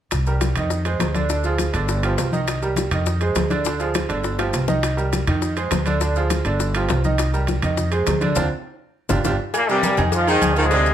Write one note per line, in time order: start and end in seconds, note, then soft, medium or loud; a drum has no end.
0.11 0.53 C2 medium
0.11 high bongo medium
0.11 high conga soft
0.11 high timbale medium
0.11 maracas medium
0.26 0.51 G3 medium
0.26 0.51 G4 medium
0.26 0.51 A#4 medium
0.26 high conga soft
0.26 maracas soft
0.41 high bongo medium
0.41 high conga medium
0.41 high timbale medium
0.41 low timbale medium
0.41 maracas medium
0.56 0.97 F2 medium
0.56 0.81 D#3 medium
0.56 0.81 D#4 medium
0.56 0.81 D#5 medium
0.56 high bongo soft
0.56 low conga medium
0.56 high timbale medium
0.56 maracas soft
0.70 high bongo medium
0.70 maracas medium
0.85 1.10 G#3 medium
0.85 1.10 G#4 medium
0.85 1.10 C5 medium
0.85 high bongo soft
0.85 high conga soft
0.85 high timbale medium
0.85 maracas soft
1.00 1.69 D2 medium
1.00 high bongo medium
1.00 low bongo medium
1.00 high conga medium
1.00 high timbale medium
1.00 low timbale medium
1.00 maracas medium
1.14 1.27 D3 medium
1.14 1.27 D4 medium
1.14 1.27 D5 medium
1.14 high bongo soft
1.14 high conga medium
1.14 high timbale medium
1.14 maracas soft
1.29 1.42 D3 medium
1.29 1.42 D4 medium
1.29 1.42 D5 medium
1.29 high bongo medium
1.29 maracas medium
1.44 1.69 F3 medium
1.44 1.69 F4 medium
1.44 1.69 G#4 medium
1.44 high bongo soft
1.44 high conga soft
1.44 maracas soft
1.58 high bongo medium
1.58 high conga medium
1.58 high timbale medium
1.58 low timbale medium
1.58 maracas medium
1.73 2.15 G1 loud
1.73 1.98 D3 medium
1.73 1.98 D4 medium
1.73 1.98 D5 medium
1.73 high bongo soft
1.73 high conga soft
1.73 high timbale medium
1.73 maracas soft
1.88 high bongo medium
1.88 high conga soft
1.88 maracas medium
2.03 2.27 F3 medium
2.03 2.28 F4 medium
2.03 2.28 G4 medium
2.03 high conga soft
2.03 high timbale medium
2.03 maracas soft
2.18 2.86 C2 medium
2.18 high bongo medium
2.18 low bongo medium
2.18 high timbale medium
2.18 low timbale medium
2.18 maracas medium
2.32 2.57 D#3 medium
2.32 2.57 D#4 medium
2.32 2.57 D#5 medium
2.32 high bongo soft
2.32 high conga medium
2.32 maracas soft
2.48 high bongo medium
2.48 high timbale medium
2.48 maracas medium
2.62 2.87 G3 medium
2.62 2.87 G4 medium
2.62 2.87 A#4 medium
2.62 high conga soft
2.62 maracas soft
2.76 high bongo medium
2.76 high conga medium
2.76 high timbale medium
2.76 low timbale medium
2.76 maracas medium
2.91 3.33 F2 medium
2.91 3.16 D#3 medium
2.91 3.16 D#4 medium
2.91 3.16 D#5 medium
2.91 high bongo soft
2.91 low conga medium
2.91 high timbale medium
2.91 maracas soft
3.06 high bongo medium
3.06 high conga soft
3.06 maracas medium
3.21 3.45 G#3 medium
3.21 3.46 G#4 medium
3.21 3.46 C5 medium
3.21 high bongo soft
3.21 high conga soft
3.21 high timbale medium
3.21 maracas soft
3.35 4.04 D2 medium
3.35 high bongo medium
3.35 low bongo medium
3.35 high conga medium
3.35 high timbale medium
3.35 low timbale medium
3.35 maracas medium
3.50 3.63 D3 medium
3.50 3.63 D4 medium
3.50 3.63 D5 medium
3.50 high bongo soft
3.50 high conga medium
3.50 high timbale medium
3.50 maracas soft
3.65 3.77 D3 medium
3.65 3.78 D4 medium
3.65 3.78 D5 medium
3.65 high bongo medium
3.65 high conga soft
3.65 maracas medium
3.80 4.04 F3 medium
3.80 4.04 F4 medium
3.80 4.05 G#4 medium
3.80 high bongo soft
3.80 high conga soft
3.80 maracas soft
3.94 high bongo medium
3.94 high conga medium
3.94 high timbale loud
3.94 low timbale medium
3.94 maracas medium
4.09 4.51 G1 medium
4.09 4.33 D3 medium
4.09 4.34 D4 medium
4.09 4.34 D5 medium
4.09 high bongo soft
4.09 high conga soft
4.09 high timbale medium
4.09 maracas soft
4.24 high bongo medium
4.24 high conga soft
4.24 maracas medium
4.38 4.63 F3 medium
4.38 4.63 F4 medium
4.38 4.64 G4 medium
4.38 high bongo medium
4.38 high conga soft
4.38 high timbale medium
4.38 maracas soft
4.53 5.22 C2 medium
4.53 high bongo medium
4.53 high conga soft
4.53 high timbale medium
4.53 low timbale medium
4.53 maracas medium
4.68 4.92 D#3 medium
4.68 4.92 D#4 medium
4.68 4.93 D#5 medium
4.68 low bongo medium
4.68 high conga medium
4.68 maracas soft
4.83 high bongo medium
4.83 high conga soft
4.83 high timbale medium
4.83 maracas medium
4.97 5.22 G3 medium
4.97 5.22 G4 medium
4.97 5.22 A#4 medium
4.97 high conga soft
4.97 maracas soft
5.13 high bongo medium
5.13 high conga medium
5.13 high timbale medium
5.13 low timbale medium
5.13 maracas medium
5.27 5.69 F2 medium
5.27 5.52 D#3 medium
5.27 5.52 D#4 medium
5.27 5.52 D#5 medium
5.27 high bongo soft
5.27 low conga medium
5.27 high timbale loud
5.27 maracas soft
5.42 high bongo medium
5.42 high conga soft
5.42 maracas medium
5.57 5.81 G#3 medium
5.57 5.81 G#4 medium
5.57 5.81 C5 medium
5.57 high bongo soft
5.57 high conga soft
5.57 high timbale medium
5.57 maracas soft
5.71 6.40 D2 medium
5.71 high bongo medium
5.71 low bongo medium
5.71 high conga medium
5.71 high timbale medium
5.71 low timbale medium
5.71 maracas medium
5.86 5.99 D3 medium
5.86 5.99 D4 medium
5.86 5.99 D5 medium
5.86 high bongo soft
5.86 high conga medium
5.86 high timbale medium
5.86 maracas soft
6.01 6.13 D3 medium
6.01 6.13 D4 medium
6.01 6.13 D5 medium
6.01 high bongo medium
6.01 high conga soft
6.01 maracas medium
6.16 6.40 F3 medium
6.16 6.40 F4 medium
6.16 6.41 G#4 medium
6.16 high bongo soft
6.16 high conga soft
6.16 maracas soft
6.30 high bongo medium
6.30 high conga medium
6.30 high timbale medium
6.30 low timbale medium
6.30 maracas medium
6.45 6.86 G1 loud
6.45 6.70 D3 medium
6.45 6.70 D4 medium
6.45 6.70 D5 medium
6.45 high bongo soft
6.45 high conga soft
6.45 high timbale medium
6.45 maracas soft
6.60 high bongo medium
6.60 high conga soft
6.60 maracas medium
6.75 6.99 F3 medium
6.75 6.99 F4 medium
6.75 6.99 G4 medium
6.75 high conga soft
6.75 high timbale medium
6.75 maracas soft
6.89 7.58 C2 medium
6.89 high bongo medium
6.89 low bongo medium
6.89 high conga soft
6.89 high timbale medium
6.89 low timbale medium
6.89 maracas medium
7.04 7.29 D#3 medium
7.04 7.29 D#4 medium
7.04 7.29 D#5 medium
7.04 high bongo soft
7.04 high conga medium
7.04 maracas soft
7.18 high bongo medium
7.18 high timbale medium
7.18 maracas medium
7.34 7.58 G3 medium
7.34 7.58 G4 medium
7.34 7.58 A#4 medium
7.34 high conga soft
7.34 maracas soft
7.47 high bongo medium
7.47 high conga loud
7.47 high timbale medium
7.47 low timbale medium
7.47 maracas medium
7.62 8.04 F2 loud
7.62 7.87 D#3 medium
7.62 7.87 D#4 medium
7.62 7.87 D#5 medium
7.62 high bongo soft
7.62 low conga medium
7.62 high timbale medium
7.62 maracas soft
7.77 high bongo medium
7.77 high conga soft
7.77 low conga medium
7.77 maracas medium
7.91 8.16 G#3 medium
7.91 8.16 G#4 medium
7.91 8.17 C5 medium
7.91 high bongo soft
7.91 high conga soft
7.91 high timbale medium
7.91 maracas soft
8.07 8.34 D2 medium
8.07 high bongo medium
8.07 low bongo medium
8.07 high conga medium
8.07 high timbale medium
8.07 low timbale medium
8.07 maracas medium
8.21 8.34 D3 medium
8.21 8.33 D4 medium
8.21 8.34 D5 medium
8.21 high bongo soft
8.21 high conga medium
8.21 high timbale medium
8.21 maracas soft
8.35 8.48 D2 loud
8.35 8.46 C4 medium
8.35 8.46 D4 loud
8.35 8.46 F4 medium
8.35 low bongo loud
8.35 low conga loud
8.35 high timbale loud
8.35 maracas medium
9.09 9.21 G1 loud
9.09 9.19 D4 loud
9.09 9.19 F4 medium
9.09 9.19 G4 medium
9.09 low bongo loud
9.09 low conga loud
9.09 high timbale loud
9.09 maracas medium
9.24 9.36 G1 medium
9.24 9.35 D4 medium
9.24 9.34 F4 medium
9.24 9.34 G4 medium
9.24 low bongo medium
9.24 low conga medium
9.24 high timbale medium
9.24 maracas medium
9.54 9.69 A#2 medium
9.54 9.69 A#3 loud
9.54 cowbell loud
9.54 high conga soft
9.54 low agogo loud
9.54 maracas medium
9.69 9.99 G2 medium
9.69 10.02 C3 medium
9.69 9.81 G3 medium
9.69 9.99 G3 loud
9.69 9.81 G4 medium
9.69 9.81 A#4 medium
9.69 high conga soft
9.69 maracas soft
9.83 9.96 G3 medium
9.83 9.96 G4 medium
9.83 9.96 A#4 medium
9.83 cowbell medium
9.83 high conga loud
9.83 low agogo medium
9.83 maracas medium
9.97 10.39 F2 loud
9.97 10.22 D#3 medium
9.97 10.22 D#4 medium
9.97 10.22 D#5 medium
9.97 cowbell medium
9.97 high conga soft
9.97 low conga medium
9.97 low agogo loud
9.97 maracas soft
10.12 10.27 F3 loud
10.12 10.28 F4 medium
10.12 cowbell loud
10.12 high conga soft
10.12 maracas medium
10.26 10.43 D#3 medium
10.26 10.56 D#3 loud
10.26 10.51 G#3 medium
10.26 10.56 D#4 medium
10.26 10.51 G#4 medium
10.26 10.52 C5 medium
10.26 high conga soft
10.26 low agogo medium
10.26 maracas soft
10.41 10.94 D2 medium
10.41 cowbell medium
10.41 high conga medium
10.41 low timbale medium
10.41 low agogo loud
10.41 maracas medium
10.56 10.94 G#2 medium
10.56 10.65 D#3 medium
10.56 10.68 F3 medium
10.56 10.94 G#3 loud
10.56 10.69 F4 medium
10.56 10.69 G#4 medium
10.56 cowbell medium
10.56 maracas soft
10.71 10.94 C3 medium
10.71 10.94 D3 medium
10.71 10.94 D4 medium
10.71 10.94 D5 medium
10.71 cowbell loud
10.71 high conga soft
10.71 low agogo medium
10.71 maracas medium
10.86 high conga soft
10.86 maracas soft